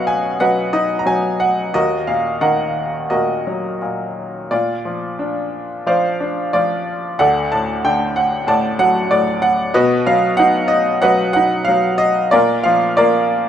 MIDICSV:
0, 0, Header, 1, 2, 480
1, 0, Start_track
1, 0, Tempo, 666667
1, 1252, Time_signature, 4, 2, 24, 8
1, 1737, Tempo, 699301
1, 3177, Tempo, 674916
1, 4617, Tempo, 641026
1, 7977, Tempo, 656455
1, 9780, End_track
2, 0, Start_track
2, 0, Title_t, "Upright piano"
2, 0, Program_c, 0, 0
2, 0, Control_c, 0, 64, 127
2, 0, Note_on_c, 0, 47, 61
2, 0, Note_on_c, 0, 54, 47
2, 0, Note_on_c, 0, 59, 48
2, 0, Note_on_c, 0, 66, 58
2, 0, Note_on_c, 0, 71, 58
2, 0, Note_on_c, 0, 75, 83
2, 0, Note_on_c, 0, 77, 79
2, 0, Note_on_c, 0, 78, 78
2, 50, Note_on_c, 0, 80, 75
2, 262, Note_off_c, 0, 71, 0
2, 263, Note_off_c, 0, 66, 0
2, 282, Note_off_c, 0, 54, 0
2, 289, Note_off_c, 0, 78, 0
2, 289, Note_on_c, 0, 78, 79
2, 291, Note_off_c, 0, 75, 0
2, 291, Note_on_c, 0, 75, 54
2, 292, Note_on_c, 0, 71, 55
2, 293, Note_on_c, 0, 54, 47
2, 295, Note_off_c, 0, 80, 0
2, 515, Note_off_c, 0, 75, 0
2, 526, Note_on_c, 0, 63, 46
2, 526, Note_on_c, 0, 75, 72
2, 534, Note_off_c, 0, 78, 0
2, 714, Note_on_c, 0, 82, 62
2, 723, Note_off_c, 0, 75, 0
2, 740, Note_off_c, 0, 59, 0
2, 751, Note_off_c, 0, 54, 0
2, 762, Note_on_c, 0, 54, 44
2, 766, Note_off_c, 0, 82, 0
2, 768, Note_on_c, 0, 80, 81
2, 993, Note_off_c, 0, 80, 0
2, 1007, Note_on_c, 0, 78, 77
2, 1224, Note_off_c, 0, 71, 0
2, 1226, Note_off_c, 0, 47, 0
2, 1230, Note_off_c, 0, 63, 0
2, 1234, Note_off_c, 0, 78, 0
2, 1235, Note_off_c, 0, 54, 0
2, 1249, Note_on_c, 0, 39, 54
2, 1254, Note_on_c, 0, 75, 77
2, 1255, Note_on_c, 0, 70, 53
2, 1260, Note_on_c, 0, 66, 55
2, 1262, Control_c, 0, 64, 0
2, 1264, Note_off_c, 0, 77, 0
2, 1393, Control_c, 0, 64, 127
2, 1493, Note_on_c, 0, 77, 66
2, 1494, Note_on_c, 0, 46, 43
2, 1502, Note_off_c, 0, 75, 0
2, 1729, Note_off_c, 0, 70, 0
2, 1735, Note_on_c, 0, 51, 43
2, 1737, Note_on_c, 0, 78, 72
2, 1739, Note_on_c, 0, 75, 53
2, 1740, Note_on_c, 0, 70, 52
2, 1744, Note_off_c, 0, 77, 0
2, 2188, Note_off_c, 0, 66, 0
2, 2199, Note_off_c, 0, 75, 0
2, 2202, Note_off_c, 0, 70, 0
2, 2208, Note_off_c, 0, 46, 0
2, 2209, Note_on_c, 0, 75, 65
2, 2212, Note_on_c, 0, 66, 46
2, 2213, Note_on_c, 0, 70, 47
2, 2218, Note_on_c, 0, 46, 44
2, 2225, Note_off_c, 0, 78, 0
2, 2462, Note_on_c, 0, 54, 44
2, 2671, Note_off_c, 0, 51, 0
2, 2692, Note_off_c, 0, 46, 0
2, 2702, Note_on_c, 0, 46, 39
2, 3149, Note_off_c, 0, 39, 0
2, 3151, Note_off_c, 0, 66, 0
2, 3151, Note_off_c, 0, 70, 0
2, 3161, Note_off_c, 0, 54, 0
2, 3165, Note_off_c, 0, 46, 0
2, 3176, Note_on_c, 0, 74, 65
2, 3179, Note_on_c, 0, 46, 49
2, 3181, Note_on_c, 0, 65, 46
2, 3187, Control_c, 0, 64, 0
2, 3207, Note_off_c, 0, 75, 0
2, 3315, Control_c, 0, 64, 127
2, 3420, Note_on_c, 0, 53, 40
2, 3661, Note_on_c, 0, 62, 44
2, 4117, Note_off_c, 0, 65, 0
2, 4129, Note_off_c, 0, 53, 0
2, 4135, Note_off_c, 0, 74, 0
2, 4140, Note_on_c, 0, 53, 45
2, 4144, Note_on_c, 0, 72, 50
2, 4145, Note_on_c, 0, 77, 69
2, 4146, Note_on_c, 0, 74, 53
2, 4371, Note_off_c, 0, 62, 0
2, 4382, Note_on_c, 0, 62, 45
2, 4605, Note_off_c, 0, 74, 0
2, 4608, Note_off_c, 0, 53, 0
2, 4615, Note_on_c, 0, 74, 70
2, 4619, Note_on_c, 0, 53, 45
2, 4620, Note_on_c, 0, 65, 51
2, 4634, Note_off_c, 0, 77, 0
2, 5083, Note_off_c, 0, 72, 0
2, 5084, Note_off_c, 0, 46, 0
2, 5084, Note_off_c, 0, 65, 0
2, 5091, Note_off_c, 0, 62, 0
2, 5099, Note_off_c, 0, 53, 0
2, 5104, Note_off_c, 0, 74, 0
2, 5108, Note_on_c, 0, 78, 85
2, 5109, Note_on_c, 0, 38, 64
2, 5115, Note_on_c, 0, 74, 54
2, 5117, Note_on_c, 0, 69, 58
2, 5122, Control_c, 0, 64, 0
2, 5273, Control_c, 0, 64, 127
2, 5337, Note_off_c, 0, 78, 0
2, 5353, Note_on_c, 0, 81, 72
2, 5354, Note_on_c, 0, 45, 47
2, 5599, Note_on_c, 0, 50, 50
2, 5599, Note_on_c, 0, 79, 82
2, 5600, Note_off_c, 0, 81, 0
2, 5834, Note_on_c, 0, 78, 70
2, 5840, Note_off_c, 0, 79, 0
2, 6039, Note_off_c, 0, 74, 0
2, 6041, Note_off_c, 0, 69, 0
2, 6055, Note_off_c, 0, 45, 0
2, 6064, Note_off_c, 0, 78, 0
2, 6066, Note_on_c, 0, 45, 56
2, 6072, Note_on_c, 0, 81, 79
2, 6076, Note_on_c, 0, 74, 58
2, 6076, Note_on_c, 0, 78, 62
2, 6296, Note_off_c, 0, 78, 0
2, 6307, Note_on_c, 0, 54, 55
2, 6307, Note_on_c, 0, 78, 89
2, 6315, Note_off_c, 0, 81, 0
2, 6516, Note_off_c, 0, 50, 0
2, 6531, Note_off_c, 0, 45, 0
2, 6532, Note_off_c, 0, 74, 0
2, 6542, Note_on_c, 0, 45, 48
2, 6543, Note_on_c, 0, 74, 80
2, 6550, Note_off_c, 0, 78, 0
2, 6777, Note_on_c, 0, 78, 86
2, 6787, Note_off_c, 0, 74, 0
2, 6987, Note_off_c, 0, 38, 0
2, 6999, Note_off_c, 0, 54, 0
2, 7002, Note_off_c, 0, 78, 0
2, 7005, Note_off_c, 0, 45, 0
2, 7018, Note_on_c, 0, 75, 82
2, 7020, Note_on_c, 0, 71, 68
2, 7022, Note_on_c, 0, 47, 70
2, 7024, Note_on_c, 0, 66, 62
2, 7028, Control_c, 0, 64, 0
2, 7151, Control_c, 0, 64, 127
2, 7243, Note_off_c, 0, 75, 0
2, 7260, Note_on_c, 0, 77, 88
2, 7262, Note_on_c, 0, 54, 55
2, 7481, Note_off_c, 0, 77, 0
2, 7488, Note_on_c, 0, 78, 92
2, 7506, Note_on_c, 0, 63, 60
2, 7719, Note_on_c, 0, 75, 81
2, 7739, Note_off_c, 0, 78, 0
2, 7949, Note_off_c, 0, 71, 0
2, 7951, Note_off_c, 0, 66, 0
2, 7965, Note_off_c, 0, 75, 0
2, 7972, Note_on_c, 0, 78, 91
2, 7975, Note_off_c, 0, 54, 0
2, 7976, Note_on_c, 0, 75, 69
2, 7979, Note_on_c, 0, 71, 66
2, 7986, Note_on_c, 0, 54, 60
2, 8193, Note_off_c, 0, 78, 0
2, 8204, Note_on_c, 0, 78, 87
2, 8215, Note_off_c, 0, 63, 0
2, 8226, Note_on_c, 0, 63, 59
2, 8433, Note_on_c, 0, 77, 85
2, 8450, Note_off_c, 0, 54, 0
2, 8453, Note_off_c, 0, 78, 0
2, 8461, Note_on_c, 0, 54, 55
2, 8666, Note_off_c, 0, 75, 0
2, 8677, Note_on_c, 0, 75, 89
2, 8685, Note_off_c, 0, 77, 0
2, 8895, Note_off_c, 0, 71, 0
2, 8896, Note_off_c, 0, 47, 0
2, 8908, Note_off_c, 0, 63, 0
2, 8915, Note_off_c, 0, 54, 0
2, 8920, Note_on_c, 0, 74, 88
2, 8926, Note_off_c, 0, 75, 0
2, 8929, Note_on_c, 0, 70, 68
2, 8931, Note_on_c, 0, 65, 67
2, 8932, Note_on_c, 0, 46, 71
2, 8934, Control_c, 0, 64, 0
2, 9073, Control_c, 0, 64, 127
2, 9156, Note_on_c, 0, 77, 81
2, 9169, Note_off_c, 0, 74, 0
2, 9169, Note_on_c, 0, 53, 57
2, 9386, Note_off_c, 0, 77, 0
2, 9394, Note_off_c, 0, 65, 0
2, 9394, Note_off_c, 0, 70, 0
2, 9400, Note_on_c, 0, 74, 88
2, 9404, Note_on_c, 0, 70, 60
2, 9405, Note_on_c, 0, 65, 59
2, 9411, Note_on_c, 0, 58, 60
2, 9780, Note_off_c, 0, 46, 0
2, 9780, Note_off_c, 0, 53, 0
2, 9780, Note_off_c, 0, 58, 0
2, 9780, Note_off_c, 0, 65, 0
2, 9780, Note_off_c, 0, 70, 0
2, 9780, Note_off_c, 0, 74, 0
2, 9780, End_track
0, 0, End_of_file